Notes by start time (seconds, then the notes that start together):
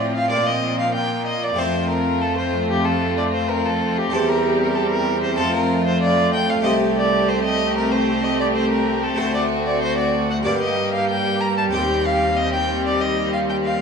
Already playing: A2 F3 C4 F4 D5
0.16 F5
0.28 A#2 A#3 F4 D5
0.47 D#5
0.79 F5
0.95 A#3 G5
1.26 D#5
1.44 D5
1.54 A3 C4 F4
1.58 F2 C4 C5
1.89 A#4
2.22 A4
2.37 C5
2.70 G4
2.85 A4
3.17 D5
3.34 C5
3.50 A#4
3.66 A4
3.98 G4
4.10 E2 G3 C4 G4 A4
4.29 A#4
4.61 A#4
4.75 A4
4.91 A#4
5.23 C5
5.35 A3 C4 F4 A4
5.39 F2 A3 F4
5.55 A#4
5.87 C5
6.02 D5
6.33 G5
6.50 F5
6.61 A3 C4 G4 D#5
6.65 C2 C4 G4
6.97 D5
7.28 C5
7.44 D#5
7.77 A#4
7.92 C5
8.23 D#5
8.40 D5
8.55 C5
8.70 A#4
9.03 A4
9.15 A3 C4 F#4 C5
9.19 D2 F#4
9.34 D5
9.66 D5
9.82 C5
9.98 D5
10.30 F#5
10.43 G2 G3 A#3 G4 D5
10.61 D#5
10.94 F5
11.09 G5
11.41 A#5
11.58 A5
11.71 D#2 C4 G4 G5
12.05 F5
12.37 D#5
12.53 G5
12.86 D5
13.01 D#5
13.33 F5
13.50 G5
13.64 F5